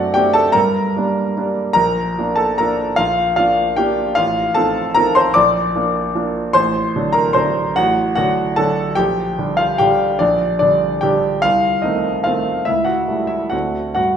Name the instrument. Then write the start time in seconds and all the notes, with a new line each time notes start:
grand piano
Already playing: F#2 A3 C4 D4 F#4 D5 F#5
0.14 A3 C4 D4 G4 G5
0.34 A4 A5
0.52 G2 A#4 A#5
0.96 G3 A#3 D4
1.37 G3 A#3 D4
1.73 A#1 A#4 A#5
2.18 F3 A#3 D4
2.36 A4 A5
2.58 F3 A#3 D4 A#4 A#5
2.96 A#1 F4 F5
3.36 F3 A#3 D4 F4 F5
3.76 F3 A#3 D4 G4 G5
4.15 A1 F4 F5
4.55 F3 C4 D#4 A4 A5
4.94 F3 C4 D#4 A#4 A#5
5.15 C5 C6
5.34 A#1 D5 D6
5.76 F3 A#3 D4
6.15 F3 A#3 D4
6.53 A1 C5 C6
6.96 D3 F#3 D4
7.13 A#4 A#5
7.33 D3 F#3 D4 C5 C6
7.76 A1 F#4 F#5
8.15 D3 F#3 D4 F#4 F#5
8.56 D3 F#3 D4 A4 A5
8.95 A#1 G4 G5
9.38 D3 G3 D4
9.57 F4 F5
9.78 D3 G3 D4 G4 G5
10.19 A#1 D4 D5
10.59 D3 G3 D4 D5
11.01 D3 G3 D4 G4 G5
11.42 C2 F4 F5
11.82 D#3 A3 C4 D#4 D#5
12.24 D#3 A3 C4 F4 F5
12.65 C#2 E4 E5
12.85 F#4 F#5
13.08 G3 A3 E4
13.27 E4 E5
13.50 D2 A3 C4 D4 F#4 F#5
13.95 G2 F#4 F#5